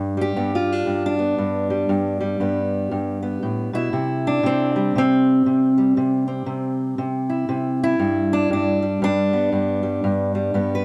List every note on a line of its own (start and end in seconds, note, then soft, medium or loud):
0.00 0.36 G2 medium
0.00 0.17 G3 soft
0.17 1.70 G3 soft
0.21 0.72 G4 medium
0.36 0.86 G2 medium
0.36 0.55 B3 soft
0.55 1.18 F4 medium
0.72 1.05 D4 medium
0.86 1.37 G2 medium
1.06 2.58 D4 medium
1.19 2.39 B3 soft
1.38 1.88 G2 medium
1.70 2.20 G3 soft
1.89 2.39 G2 medium
2.20 4.46 G3 medium
2.40 2.90 G2 medium
2.40 3.21 B3 soft
2.91 3.42 G2 medium
3.22 3.73 B3 soft
3.43 3.73 A2 medium
3.73 3.93 B2 medium
3.73 4.76 E4 medium
3.93 4.43 C3 medium
4.27 4.96 D4 medium
4.43 4.95 C3 medium
4.43 4.96 C4 medium
4.76 5.77 G3 soft
4.96 5.45 C3 medium
4.96 6.26 C4 loud
5.46 5.94 C3 medium
5.78 8.82 G3 soft
5.97 6.45 C3 medium
6.28 7.98 C4 soft
6.46 6.97 C3 medium
6.98 7.48 C3 medium
7.30 7.81 E4 soft
7.49 7.98 C3 medium
7.84 8.84 E4 loud
7.99 8.50 G2 medium
8.33 8.52 D4 medium
8.50 9.02 G2 medium
8.50 9.03 D4 medium
8.82 9.82 G3 soft
9.02 9.51 G2 medium
9.02 10.56 D4 loud
9.33 10.54 B3 soft
9.53 10.03 G2 medium
9.83 10.34 G3 soft
10.04 10.53 G2 medium
10.35 10.85 G3 soft
10.54 10.85 G2 medium
10.54 10.85 B3 soft
10.75 10.85 B4 medium